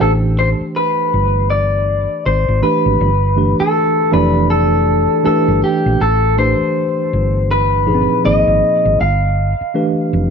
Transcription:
0.00 A1 E3 A3 D4 G4 A4 C5
0.39 C5
0.61 muted fingered electric bass stroke
0.76 B4
1.14 G1
1.50 D5
2.26 G#1 C5
2.48 G#1
2.62 E3 A3 D4 G4 B4
2.86 G#1
3.01 G1
3.36 E3 A3 D4 G4 B4
3.60 A4, muted fingered electric bass stroke
4.11 F1 E3 A3 D4 G4 B4 D5
4.50 A4
5.24 E3 A3 D4 G4 A4 B4, muted fingered electric bass stroke
5.48 G1
5.64 G4
5.86 A#1
6.01 A1 A4
6.37 E3 A3 D4 G4 B4 C5
6.61 muted fingered electric bass stroke
7.13 G1
7.51 B4
7.86 A#2 F3 D#4 G#4 B4
7.94 C4
8.24 G#1 F3 A#3 D#4 G#4 C5 D#5
8.48 G#1
8.85 G#1
9.01 G1 F5
9.61 muted fingered electric bass stroke
9.74 E3 A3 D4 G4 B4
10.13 F1

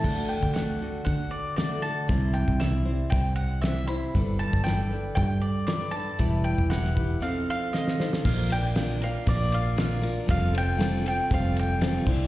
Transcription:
Already playing: A5
0.02 D2 D3 A3 D4 F#4 A4, kick, crash
0.29 G5
0.43 D2, kick
0.53 A3 D4 F#4 F#5, snare, closed hi-hat
0.58 A4
0.80 D4 F#4 A4
1.05 D3 F#5, kick, closed hi-hat
1.31 D5
1.56 A3 D4 F#4 A4 D5, snare, closed hi-hat
1.82 D4 F#4 A4 A5
2.08 C2 C3 E3 G3 C4 E4 C5, kick, closed hi-hat
2.34 G5
2.48 C2, kick
2.60 G3 C4 E4 C5 E5, snare, closed hi-hat
2.85 G3 C4 E4 C5
3.10 C2 G5, kick, closed hi-hat
3.36 F#5
3.62 G3 C4 E4 E5, snare, closed hi-hat
3.66 C5
3.88 C4 E4 C5 B5
3.92 G3
4.15 G1 G3 D4 A4 B4, kick, closed hi-hat
4.39 A5
4.53 G1, kick
4.64 G3 D4 A4 B4 G5, snare, closed hi-hat
4.90 D4 A4 B4
5.15 G2 G5, kick, closed hi-hat
5.41 D5
5.67 G3 D4 A4 D5, snare, closed hi-hat
5.71 B4
5.91 A4 B4 A5
5.96 D4
6.19 E1 E3 G3 E4 G4 B4, kick, closed hi-hat
6.44 G5
6.58 E1, kick
6.70 G3 E4 G4 B4 F#5, snare, closed hi-hat
6.85 snare
6.95 E4 G4 B4, kick
7.20 F3 C4 D#4 A4 C5 F5
7.50 F5
7.73 C4 D#4 A4 C5 D#5, snare
7.88 snare
7.99 D#4 A4 C5, snare
8.13 snare
8.25 A#1 A#2 F3 A#3 D4 F4 A#4 F5, kick, crash
8.50 A#3 D4 F4 A#4 G5, ride
8.76 A#2 F3 A#3 D4 F4 A#4, snare, ride
9.01 A#3 D4 F4 A#4 F5, ride
9.26 A#1 A#3 D4 F4 A#4 D5, kick, ride
9.52 F5, ride
9.76 A#2 F3 A#3 D4 F4 A#4, snare, ride
10.02 A#3 D4 F4 A#4, ride
10.26 F1 F3 G3 C4 F4 A4, kick, ride
10.30 F5
10.52 C4 F4 A4, ride
10.58 G5
10.77 F3 G3 C4 F4 A4, ride
10.81 snare
11.03 C4 F4 A4, ride
11.08 G5
11.29 F1 G3 C4 F4 A4, kick, ride
11.34 F5
11.56 G5, ride
11.79 F3 G3 C4 F4 A4, snare, ride
12.05 C2 G3 D4 E4 C5, kick, crash

